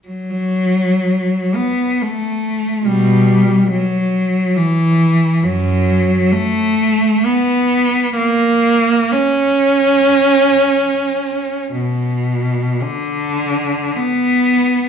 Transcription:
0.08 1.52 F#3 soft
1.55 2.01 B3 soft
2.01 2.86 A3 soft
2.85 3.66 B2 soft
2.85 3.70 G3 soft
3.70 4.54 F#3 soft
4.57 5.44 E3 soft
5.43 6.29 F#2 soft
5.43 6.33 F#3 medium
6.32 7.25 A3 medium
7.25 8.17 B3 medium
8.16 9.10 A#3 medium
9.12 11.73 C#4 medium
11.74 12.82 B2 soft
12.82 13.95 D3 soft
13.96 14.89 B3 medium

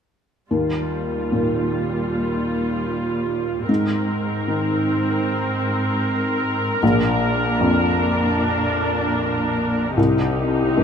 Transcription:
0.50 3.65 D#2 soft
0.50 3.64 G3 soft
0.50 3.64 F4 soft
1.32 3.69 A#2 soft
3.68 6.78 G#2 soft
3.68 6.82 G#2 soft
3.68 6.78 C4 soft
3.68 9.93 A#4 soft
4.48 6.82 D#3 soft
6.82 9.94 A#1 soft
6.82 9.94 A#2 soft
6.82 9.94 D4 soft
7.60 9.98 F2 soft
9.97 10.84 C2 soft
9.97 10.84 C3 soft
9.97 10.84 D#4 soft
9.97 10.84 G4 soft
10.77 10.84 G2 soft

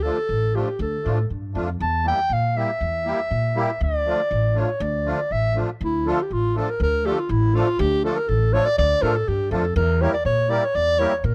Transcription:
0.03 0.17 F3 medium
0.03 0.18 A3 medium
0.03 0.18 D4 medium
0.03 0.18 F4 medium
0.03 0.57 A4 loud
0.29 0.59 A1 medium
0.54 0.68 F3 medium
0.54 0.68 A3 medium
0.54 0.69 D4 soft
0.54 0.69 F4 medium
0.54 0.80 G4 medium
0.79 0.94 D2 medium
0.79 1.28 A4 medium
1.03 1.28 A2 medium
1.03 1.18 F3 medium
1.03 1.19 A3 medium
1.03 1.19 D4 medium
1.03 1.19 F4 medium
1.30 1.53 G2 medium
1.54 1.78 F2 medium
1.54 1.69 F3 medium
1.54 1.69 A3 medium
1.54 1.69 D4 medium
1.54 1.70 F4 medium
1.80 2.11 E2 loud
1.80 2.05 A5 loud
2.04 2.19 G3 medium
2.04 2.19 A#3 medium
2.04 2.19 E4 medium
2.04 2.20 G4 medium
2.04 2.34 G5 loud
2.29 2.60 A#2 medium
2.29 2.58 F5 medium
2.56 2.70 G3 medium
2.56 2.70 A#3 medium
2.56 2.71 E4 medium
2.56 2.71 G4 medium
2.56 3.82 E5 medium
2.81 3.11 E2 medium
3.05 3.20 G3 medium
3.05 3.20 A#3 medium
3.05 3.20 E4 medium
3.05 3.21 G4 medium
3.31 3.61 A#2 medium
3.55 3.70 G3 medium
3.55 3.70 A#3 medium
3.55 3.70 E4 medium
3.55 3.71 G4 medium
3.81 4.11 D2 medium
3.81 4.60 D5 loud
4.05 4.20 F3 medium
4.05 4.20 A3 medium
4.05 4.21 D4 medium
4.05 4.21 F4 medium
4.31 4.61 A1 medium
4.54 4.69 F3 medium
4.54 4.70 A3 medium
4.54 4.70 D4 medium
4.54 4.70 F4 medium
4.58 4.84 C#5 medium
4.80 5.11 D2 loud
4.80 5.33 D5 medium
5.04 5.19 F3 medium
5.04 5.20 A3 medium
5.04 5.20 D4 medium
5.04 5.20 F4 medium
5.31 5.61 A1 medium
5.31 5.56 E5 medium
5.55 5.69 F3 medium
5.55 5.69 A3 medium
5.55 5.70 D4 medium
5.55 5.70 F4 medium
5.81 6.10 D2 medium
5.81 6.10 E4 medium
6.05 6.19 F3 medium
6.05 6.20 A3 medium
6.05 6.20 D4 medium
6.05 6.20 F4 medium
6.05 6.24 F4 medium
6.05 6.20 A4 medium
6.22 6.34 G4 medium
6.31 6.60 A1 medium
6.31 6.56 F4 loud
6.55 6.69 F3 medium
6.55 6.69 A3 medium
6.55 6.69 D4 medium
6.55 6.69 F4 medium
6.55 6.70 A4 medium
6.59 6.71 A4 medium
6.70 6.81 A#4 medium
6.80 7.10 D2 loud
6.80 7.07 A#4 loud
7.04 7.18 F3 medium
7.04 7.18 A3 medium
7.04 7.19 D4 medium
7.04 7.19 F4 medium
7.04 7.21 G4 loud
7.04 7.19 A4 medium
7.19 7.32 F4 medium
7.29 7.59 A1 medium
7.29 7.56 E4 medium
7.54 7.68 F3 medium
7.54 7.68 A3 medium
7.54 7.68 D4 medium
7.54 7.68 F4 medium
7.54 7.81 F4 loud
7.54 7.68 A4 medium
7.79 8.09 D2 loud
7.79 8.04 G4 loud
8.03 8.17 F3 medium
8.03 8.18 A3 medium
8.03 8.18 D4 medium
8.03 8.18 F4 medium
8.03 8.18 A4 loud
8.03 8.18 A4 medium
8.16 8.30 A#4 medium
8.28 8.58 A1 medium
8.28 8.55 A4 loud
8.53 8.67 F3 medium
8.53 8.67 A3 medium
8.53 8.67 D4 medium
8.53 8.67 F4 medium
8.53 8.67 A4 medium
8.53 8.67 C#5 loud
8.65 8.78 D5 loud
8.78 8.93 D2 loud
8.78 9.04 D5 loud
9.01 9.24 A2 medium
9.01 9.15 F3 medium
9.01 9.16 A3 medium
9.01 9.16 D4 medium
9.01 9.16 F4 medium
9.01 9.16 A4 medium
9.01 9.17 A#4 loud
9.16 9.30 A4 medium
9.28 9.50 G2 medium
9.28 9.51 G4 loud
9.51 9.73 F2 medium
9.51 9.65 F3 medium
9.51 9.65 A3 medium
9.51 9.65 D4 medium
9.51 9.65 F4 medium
9.51 9.74 A4 medium
9.51 9.66 A4 medium
9.76 10.05 E2 loud
9.76 10.03 A#4 loud
10.00 10.14 G3 medium
10.00 10.15 A#3 medium
10.00 10.15 E4 medium
10.00 10.15 G4 medium
10.00 10.15 A#4 medium
10.00 10.13 C#5 loud
10.14 10.25 D5 medium
10.25 10.55 A#2 medium
10.25 10.52 C#5 loud
10.49 10.63 G3 medium
10.49 10.63 A#3 medium
10.49 10.63 E4 medium
10.49 10.64 G4 medium
10.49 10.64 A#4 medium
10.49 10.67 D5 loud
10.65 10.77 C#5 loud
10.75 11.04 E2 medium
10.75 11.01 D5 loud
10.98 11.12 G3 medium
10.98 11.13 A#3 medium
10.98 11.13 E4 medium
10.98 11.13 G4 medium
10.98 11.13 A#4 medium
10.98 11.17 C#5 loud
11.17 11.26 C#5 medium
11.24 11.35 A#2 medium
11.24 11.35 A#4 medium

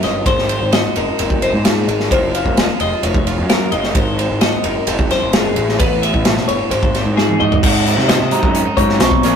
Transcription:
0.00 0.25 G1 medium
0.00 0.26 F#2 medium
0.00 2.12 F#3 medium
0.00 0.49 C4 medium
0.00 0.24 F4 medium
0.00 0.29 A#4 medium
0.00 0.26 D#5 medium
0.00 snare soft
0.00 ride medium
0.26 0.58 G#1 medium
0.26 1.65 G#2 medium
0.26 0.72 C5 medium
0.26 kick medium
0.26 ride medium
0.38 snare soft
0.49 1.19 C4 soft
0.49 ride medium
0.61 0.83 G#1 medium
0.72 2.13 F#4 medium
0.72 0.96 D#5 medium
0.72 snare medium
0.72 ride medium
0.96 1.07 F#1 medium
0.96 1.42 D#4 medium
0.96 1.42 A#4 medium
0.96 ride medium
1.19 1.55 F#1 medium
1.19 2.12 C4 medium
1.19 ride medium
1.30 kick medium
1.42 2.09 D#4 medium
1.42 1.66 C5 medium
1.42 ride medium
1.54 1.86 G#2 medium
1.65 1.88 A#2 medium
1.65 2.12 G#4 medium
1.65 snare loud
1.65 ride medium
1.88 2.09 G#1 medium
1.88 2.11 G#2 medium
1.88 ride medium
2.00 snare soft
2.11 2.43 F#1 medium
2.11 5.80 F#3 medium
2.11 2.35 C4 medium
2.11 2.80 F4 medium
2.11 2.58 A#4 medium
2.11 2.35 C5 medium
2.11 kick medium
2.11 ride medium
2.35 3.04 C4 medium
2.35 2.80 F5 medium
2.35 ride medium
2.45 2.67 F#1 medium
2.45 kick medium
2.57 3.49 G#4 medium
2.57 snare medium
2.57 ride medium
2.80 2.91 F1 medium
2.80 3.26 F4 medium
2.80 3.03 D#5 medium
2.80 ride medium
3.03 3.40 F1 medium
3.03 3.49 C#5 medium
3.03 ride medium
3.14 kick medium
3.27 3.72 F4 medium
3.27 ride medium
3.38 3.70 F#2 medium
3.50 3.72 A#4 medium
3.50 3.93 A#4 medium
3.50 snare medium
3.50 ride medium
3.72 3.94 F#1 medium
3.72 3.93 F4 medium
3.72 3.96 D#5 medium
3.72 ride medium
3.84 snare soft
3.95 4.27 G#1 medium
3.95 5.10 G#2 medium
3.95 4.41 C5 medium
3.95 kick loud
3.95 ride medium
4.19 4.87 C4 medium
4.19 ride medium
4.30 4.52 G#1 medium
4.41 5.57 F#4 medium
4.41 4.64 D#5 medium
4.41 snare loud
4.41 ride medium
4.64 4.75 F#1 medium
4.64 5.54 D#4 medium
4.64 5.10 A#4 medium
4.64 ride medium
4.87 5.09 F#1 loud
4.87 5.54 C4 medium
4.87 ride medium
4.99 kick medium
5.10 5.33 F#2 medium
5.10 5.34 C5 medium
5.10 snare soft
5.10 ride medium
5.22 5.54 F#1 medium
5.33 5.56 G#2 medium
5.33 5.78 G#4 medium
5.33 snare loud
5.33 ride medium
5.55 5.77 A1 medium
5.55 6.25 A2 medium
5.55 ride medium
5.69 snare soft
5.79 6.12 A1 medium
5.79 6.72 B3 medium
5.79 6.02 B4 medium
5.79 kick loud
5.79 ride medium
6.02 6.69 G#4 medium
6.02 6.47 E5 medium
6.02 ride medium
6.14 6.36 A1 medium
6.14 kick medium
6.25 6.49 B2 medium
6.25 snare loud
6.25 ride medium
6.37 snare soft
6.48 6.59 G1 medium
6.48 6.70 A2 medium
6.48 6.71 C#5 medium
6.48 ride medium
6.70 7.07 G#1 loud
6.70 7.60 G#2 medium
6.70 7.17 C5 loud
6.70 ride medium
6.83 kick medium
6.95 7.61 C4 medium
6.95 snare soft
6.95 ride medium
7.05 7.38 G#2 medium
7.17 7.66 F#4 medium
7.17 7.40 G#4 medium
7.17 snare medium
7.29 high tom medium
7.40 7.61 G#2 medium
7.40 7.61 D#4 medium
7.40 7.63 D#5 medium
7.40 mid tom medium
7.52 floor tom medium
7.63 7.95 G#2 medium
7.63 8.77 G#2 medium
7.63 8.09 C4 medium
7.63 8.54 D#4 medium
7.63 8.08 F#5 medium
7.63 kick loud
7.63 crash loud
7.67 9.25 F#4 medium
7.86 8.16 D#3 medium
7.86 8.16 F#3 medium
7.86 8.16 C4 medium
7.86 8.16 D#4 medium
7.86 closed hi-hat medium
7.98 8.19 C3 medium
7.98 snare soft
8.08 9.21 C4 medium
8.08 8.54 D#5 medium
8.08 snare loud
8.08 closed hi-hat medium
8.20 8.31 C3 medium
8.31 8.62 D#3 medium
8.31 8.62 F#3 medium
8.31 9.27 G#3 medium
8.31 8.62 C4 medium
8.31 8.62 D#4 medium
8.31 9.03 A#5 medium
8.31 closed hi-hat medium
8.43 8.64 F#2 medium
8.43 kick medium
8.55 8.65 C#4 medium
8.55 closed hi-hat medium
8.65 9.23 D#4 medium
8.77 9.00 F#2 medium
8.77 8.99 G#2 medium
8.77 9.08 D#3 medium
8.77 9.08 F#3 medium
8.77 9.07 C4 medium
8.77 9.07 D#4 medium
8.77 9.00 C#5 medium
8.77 kick medium
8.77 closed hi-hat medium
8.89 snare soft
9.00 9.24 B1 medium
9.00 9.23 G#2 medium
9.00 9.36 C4 medium
9.00 9.36 C#6 loud
9.00 snare loud
9.00 closed hi-hat loud
9.11 kick medium
9.23 9.34 A#1 medium
9.23 9.36 A#2 medium
9.23 9.36 F3 medium
9.23 9.36 A#3 medium
9.23 9.36 C#4 medium
9.23 9.36 F4 medium
9.23 9.36 G#4 medium
9.23 snare soft
9.23 closed hi-hat medium

